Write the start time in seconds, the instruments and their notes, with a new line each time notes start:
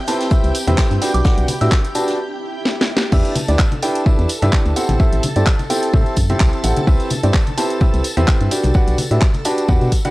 Already playing: ambient pad C4 G4 E5 B5, string machine G4 G5
0.07 upright piano C4 E4 G4 B4 A5, snare, open hi-hat, tambourine, shaker
0.20 snare, closed hi-hat, tambourine
0.31 upright piano C4 E4 G4 B4 E5, kick, tambourine, shaker
0.44 fm bass C2, closed hi-hat, tambourine
0.55 open hi-hat, tambourine, shaker
0.67 fm bass E2, upright piano C4 E4 G4 B4 E5, closed hi-hat, tambourine, high conga
0.78 kick, snare, clap, tambourine, shaker
0.91 fm bass G2, closed hi-hat, tambourine
1.01 ambient pad D4, upright piano D4 F#4 G4 B4 G5, snare, open hi-hat, tambourine, shaker
1.14 fm bass B1, synth bell D6, closed hi-hat, tambourine
1.24 upright piano D4 F#4 G4 B4 F#5, kick, snare, tambourine, shaker
1.38 fm bass B1, closed hi-hat, tambourine
1.48 open hi-hat, tambourine, high conga, shaker
1.61 fm bass A2, upright piano D4 F#4 G4 B4 E5, synth bell E6, closed hi-hat, tambourine
1.71 kick, snare, clap, tambourine, shaker
1.84 closed hi-hat, tambourine
1.95 upright piano D4 F#4 G4 B4 A5, open hi-hat, tambourine, shaker
2.08 snare, closed hi-hat, tambourine
2.19 swell
2.65 snare
2.81 snare
2.97 snare
3.12 fm bass E2, upright piano D4 E4 G4 B4 E5, string machine A4 A5, kick, crash, tambourine
3.25 closed hi-hat, tambourine
3.36 open hi-hat, tambourine, high conga
3.48 fm bass D2, upright piano D4 E4 G4 B4 D5, closed hi-hat, tambourine
3.59 kick, clap, tambourine
3.71 closed hi-hat, tambourine, high conga
3.83 upright piano D4 E4 G4 B4 G5, open hi-hat, tambourine
3.95 closed hi-hat, tambourine
4.06 upright piano D4 E4 G4 B4 E5, kick, tambourine, high conga
4.19 fm bass E2, closed hi-hat, tambourine
4.29 open hi-hat, tambourine
4.42 fm bass G2, upright piano D4 E4 G4 B4 E5, closed hi-hat, tambourine, high conga
4.53 kick, clap, tambourine
4.66 fm bass D2, closed hi-hat, tambourine
4.76 upright piano C4 E4 G4 A4 F#5, open hi-hat, tambourine
4.89 fm bass A1, closed hi-hat, tambourine, high conga
5.00 upright piano C4 E4 G4 A4 E5, kick, tambourine
5.13 fm bass A1, closed hi-hat, tambourine
5.23 open hi-hat, tambourine, high conga
5.36 fm bass G2, upright piano C4 E4 G4 A4 D5, closed hi-hat, tambourine
5.46 kick, clap, tambourine
5.59 closed hi-hat, tambourine, high conga
5.70 upright piano C4 E4 G4 A4 G5, open hi-hat, tambourine
5.83 closed hi-hat, tambourine
5.93 fm bass A2, upright piano C4 E4 G4 A4 E5, kick, tambourine, high conga
6.06 closed hi-hat, tambourine
6.16 fm bass F#2, kick, open hi-hat, tambourine
6.30 upright piano C4 E4 G4 A4 E5, closed hi-hat, tambourine, high conga
6.40 fm bass C2, kick, clap, open hi-hat, tambourine
6.53 closed hi-hat, tambourine
6.64 fm bass A1, upright piano C4 E4 G4 A4 F#5, open hi-hat, tambourine
6.77 closed hi-hat, tambourine, high conga
6.87 fm bass C2, upright piano C4 E4 G4 B4 E5, kick, tambourine
7.00 closed hi-hat, tambourine
7.10 open hi-hat, tambourine, high conga
7.23 fm bass G2, upright piano C4 E4 G4 B4 D5, closed hi-hat, tambourine
7.34 kick, clap, tambourine
7.47 closed hi-hat, tambourine, high conga
7.58 upright piano C4 E4 G4 B4 A5, open hi-hat, tambourine
7.70 closed hi-hat, tambourine
7.81 upright piano C4 E4 G4 B4 E5, kick, tambourine, high conga
7.94 fm bass C2, closed hi-hat, tambourine
8.04 open hi-hat, tambourine
8.17 fm bass E2, upright piano C4 E4 G4 B4 E5, closed hi-hat, tambourine, high conga
8.28 kick, clap, tambourine
8.40 fm bass G2, closed hi-hat, tambourine
8.51 upright piano D4 F#4 G4 B4 G5, open hi-hat, tambourine
8.64 fm bass B1, closed hi-hat, tambourine, high conga
8.74 upright piano D4 F#4 G4 B4 F#5, kick, tambourine
8.88 fm bass B1, closed hi-hat, tambourine
8.98 open hi-hat, tambourine, high conga
9.11 fm bass A2, upright piano D4 F#4 G4 B4 E5, closed hi-hat, tambourine
9.21 kick, clap, tambourine
9.34 closed hi-hat, tambourine, high conga
9.45 upright piano D4 F#4 G4 B4 A5, open hi-hat, tambourine
9.58 closed hi-hat, tambourine
9.68 fm bass E2, upright piano D4 F#4 G4 B4 F#5, kick, tambourine, high conga
9.81 fm bass B2, closed hi-hat, tambourine
9.92 kick, open hi-hat, tambourine
10.05 upright piano D4 F#4 G4 B4 F#5, closed hi-hat, tambourine, high conga